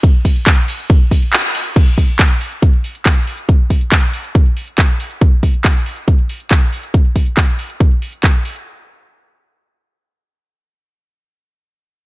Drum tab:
CC |----------------|x---------------|----------------|----------------|
RD |x-x---x-x-x-x-x-|----------------|----------------|----------------|
HH |xxoxxxoxxxoxxxox|x-oxxxoxxxoxxxox|x-oxxxoxxxoxxxox|x-oxxxoxxxoxxxox|
TB |x-xx--xx--xxx-xx|----------------|----------------|----------------|
CP |----x-------x---|----x-------x---|----x-------x---|----x-------x---|
BD |o-o-o---o-o-----|o-o-o---o---o---|o-o-o---o---o---|o-o-o---o---o---|

CC |----------------|----------------|----------------|
RD |----------------|----------------|----------------|
HH |xxoxxxoxxxoxxxox|----------------|----------------|
TB |----------------|----------------|----------------|
CP |----x-------x---|----------------|----------------|
BD |o-o-o---o---o---|----------------|----------------|